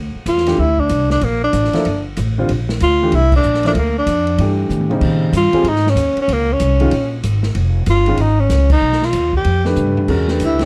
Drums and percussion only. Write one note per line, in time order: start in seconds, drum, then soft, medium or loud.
0.26 hi-hat pedal medium
0.26 ride medium
0.37 snare soft
0.46 snare soft
0.46 ride medium
0.78 kick soft
0.89 hi-hat pedal medium
0.89 ride medium
1.10 snare soft
1.21 ride medium
1.53 hi-hat pedal medium
1.53 ride medium
1.64 snare soft
1.73 snare soft
1.73 ride soft
1.85 ride medium
2.17 hi-hat pedal medium
2.17 ride medium
2.49 ride medium
2.69 snare medium
2.80 hi-hat pedal medium
2.80 ride medium
3.12 ride medium
3.32 kick medium
3.32 crash medium
3.43 hi-hat pedal medium
3.54 snare soft
3.63 snare soft
3.63 ride soft
3.75 ride medium
4.07 hi-hat pedal medium
4.07 ride medium
4.27 ride soft
4.38 ride medium
4.70 hi-hat pedal medium
4.70 high tom soft
4.81 high tom medium
4.91 high tom medium
5.01 kick medium
5.01 crash medium
5.33 hi-hat pedal medium
5.33 ride medium
5.53 ride soft
5.65 ride medium
5.76 snare soft
5.87 snare soft
5.97 hi-hat pedal medium
5.97 ride medium
6.17 ride soft
6.29 ride medium
6.60 hi-hat pedal medium
6.60 ride medium
6.80 ride soft
6.91 ride medium
7.23 hi-hat pedal medium
7.23 ride medium
7.43 snare soft
7.55 ride medium
7.86 hi-hat pedal medium
7.86 ride medium
8.06 ride soft
8.17 ride medium
8.50 snare soft
8.50 hi-hat pedal medium
8.50 ride medium
8.70 kick medium
8.70 crash medium
8.92 snare soft
9.02 snare soft
9.13 hi-hat pedal soft
9.13 ride medium
9.33 kick medium
9.45 ride medium
9.65 snare soft
9.76 hi-hat pedal medium
9.76 mid tom soft
9.87 mid tom medium
9.97 floor tom medium
10.08 kick medium
10.08 crash medium
10.28 snare soft
10.40 hi-hat pedal medium
10.40 ride medium
10.59 snare medium
10.59 ride soft